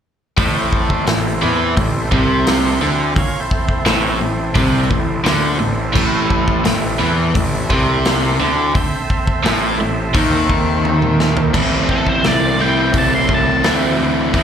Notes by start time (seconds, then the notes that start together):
0.37 A1 A2 C4 E4 A4 C5, kick, open hi-hat
0.73 kick
0.90 kick
1.07 A1 A2, snare, open hi-hat
1.42 E2 E3
1.77 A1 A2, kick, open hi-hat
2.12 C2 C3, kick
2.47 snare, open hi-hat
2.81 D2 D3
3.16 C#4 F4 A#4 C#5, muted picked electric bass stroke, muted overdriven electric guitar stroke, kick, open hi-hat
3.40 C4 E4 A4 C5
3.51 kick
3.69 kick
3.86 A1 A2, snare, open hi-hat
4.20 A1 A2
4.55 C2 C3, kick, open hi-hat
4.90 A1 A2, kick
5.25 D2 D3, snare, open hi-hat
5.60 A1 A2
5.94 A1 A2 C4 E4 A4, kick, crash
6.30 kick
6.48 kick
6.65 A1 A2, snare, open hi-hat
7.00 E2 E3
7.35 A1 A2, kick, open hi-hat
7.70 C2 C3, kick
8.05 snare, open hi-hat
8.40 D2 D3
8.73 C4 A4 C5 E5, muted overdriven electric guitar stroke, muted picked electric bass stroke, kick, open hi-hat
9.10 kick
9.27 kick
9.44 A1 A2, snare, open hi-hat
9.79 A1 A2
10.15 D#2 D#3, kick, open hi-hat
10.50 kick
10.85 high tom
11.02 mid tom
11.20 A3 B3, snare
11.27 C4 D4
11.33 E4 F4, floor tom
11.39 G4 A4
11.44 B4 C5
11.50 A2 C4 E4 A4 C5 D5
11.54 A1 E3 A3 C4 E4, kick, crash
11.89 A4, kick
12.07 C5, kick
12.24 C2 D5, snare, open hi-hat
12.59 A2 E3 A3 C4 E4 G5
12.93 C2, kick, open hi-hat
12.98 A5
13.15 C6
13.29 C2, kick
13.34 A5
13.63 D2 A2 E3 A3 C4 E4, snare, open hi-hat
13.99 D2
14.33 E2 A2 E3 A3 C4 C#4 E4 F4 A#4 C#5, kick, open hi-hat